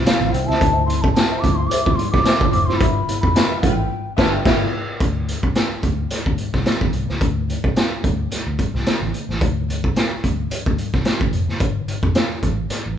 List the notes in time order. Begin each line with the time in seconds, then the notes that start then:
0.05 F5, muted hollow-body jazz guitar stroke, snare, closed hi-hat, tambourine, high conga
0.20 A1 F3 C4 E4, muted hollow-body jazz guitar stroke, high conga
0.32 C2 D3 F4 C5 E5 G5, closed hi-hat
0.47 C#2 F3 C4 E4 F4 C5 E5 A5, snare
0.60 D2 D3 E4 B4 E5, kick, closed hi-hat
0.71 F4 C5
0.86 C4 E4 C6, closed hi-hat, muted conga
1.02 C2 A5, muted hollow-body jazz guitar stroke, kick
1.12 D3 A5, muted hollow-body jazz guitar stroke, closed hi-hat, high conga
1.17 snare, tambourine
1.30 F4 C5 E5
1.40 F3 C4 E4 D6, muted hollow-body jazz guitar stroke, low conga
1.44 D2, kick, closed hi-hat
1.55 C4 E4 C6, muted hollow-body jazz guitar stroke
1.67 F4 D6, closed hi-hat, muted conga
1.71 C5 E5
1.85 D2 F3 C4 E4, kick
1.95 D3 C6, muted hollow-body jazz guitar stroke, closed hi-hat, muted conga, low conga
2.11 C2 F3 C4 E4 D6, muted hollow-body jazz guitar stroke, kick, snare
2.24 F4 C5 E5, snare, closed hi-hat, tambourine, high conga
2.40 A1 F3 C4 E4, muted hollow-body jazz guitar stroke, kick, high conga
2.50 F1 D3 F4 C5 E5 D6, closed hi-hat
2.66 F#1 F3 C4 E4 C6, muted hollow-body jazz guitar stroke, snare
2.77 G1 G2 D3 F4 B4 B5, kick
2.81 E5, closed hi-hat
3.08 B3 E4, closed hi-hat, muted conga
3.21 F1 B5, muted hollow-body jazz guitar stroke, kick
3.34 G2 D3 B3 F4 B4, muted hollow-body jazz guitar stroke, snare, closed hi-hat, tambourine, high conga
3.49 F4 B4 E5
3.61 A1 F3 A3 B3 E4 F4 B4 G5, muted hollow-body jazz guitar stroke, kick, closed hi-hat, low conga
3.78 B3 E4, muted hollow-body jazz guitar stroke
4.17 G1 G2 D3 B3 F4 B4 E5 A5, kick, snare, crash
4.33 G5
4.44 G1 F3 A3 B3 E4 F4 B4 E5, kick, snare, crash
5.00 D2, kick, closed hi-hat
5.28 closed hi-hat, muted conga
5.43 C2, kick
5.55 snare, closed hi-hat, high conga
5.83 D2, kick, closed hi-hat, low conga
6.10 muted picked electric bass stroke, snare, closed hi-hat, muted conga
6.26 D2, kick
6.38 closed hi-hat, low conga
6.54 C2, kick, snare
6.66 snare, closed hi-hat, high conga
6.81 A1, kick, high conga
6.93 C2, closed hi-hat, high conga
7.09 C#2, snare
7.21 D2, kick, closed hi-hat
7.49 closed hi-hat, muted conga
7.64 C2, kick
7.76 snare, closed hi-hat, high conga
8.03 D2, kick, closed hi-hat, low conga
8.31 muted picked electric bass stroke, snare, closed hi-hat, muted conga
8.47 D2
8.58 kick, closed hi-hat, low conga
8.74 C2, snare
8.86 snare, closed hi-hat, high conga
9.01 A1, high conga
9.14 closed hi-hat, high conga
9.29 A1, snare
9.41 D2, kick, closed hi-hat
9.69 closed hi-hat, muted conga
9.84 C2, kick
9.96 snare, closed hi-hat, high conga
10.23 D2, kick, closed hi-hat, low conga
10.50 muted picked electric bass stroke, closed hi-hat, muted conga
10.66 D2, kick
10.77 closed hi-hat, low conga
10.94 C2, kick, snare
11.05 snare, closed hi-hat, high conga
11.20 A1, kick, high conga
11.33 F1, closed hi-hat, high conga
11.48 F#1, snare
11.60 G1, kick, closed hi-hat
11.88 closed hi-hat, muted conga
12.03 F1, kick
12.15 snare, closed hi-hat, high conga
12.43 A1, kick, closed hi-hat, low conga
12.70 muted picked electric bass stroke, snare, closed hi-hat, muted conga
12.86 A1